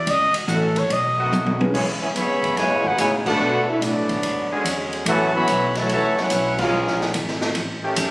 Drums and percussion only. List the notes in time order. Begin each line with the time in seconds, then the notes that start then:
0.07 ride
0.34 ride
0.48 hi-hat pedal
0.76 kick, ride
0.90 ride
1.32 hi-hat pedal, high tom
1.46 high tom
1.61 high tom
1.74 kick, crash
2.16 hi-hat pedal, ride
2.43 kick, ride
2.57 snare, ride
2.84 kick
2.98 hi-hat pedal, ride
3.26 kick, crash
3.82 hi-hat pedal, ride
4.09 kick, ride
4.23 ride
4.65 hi-hat pedal, ride
4.93 ride
5.06 ride
5.47 hi-hat pedal, ride
5.75 snare, ride
5.89 ride
6.17 snare
6.30 hi-hat pedal, ride
6.58 kick, crash
6.87 snare
7.01 snare
7.14 hi-hat pedal, ride
7.28 snare
7.41 snare
7.55 ride
7.96 hi-hat pedal, ride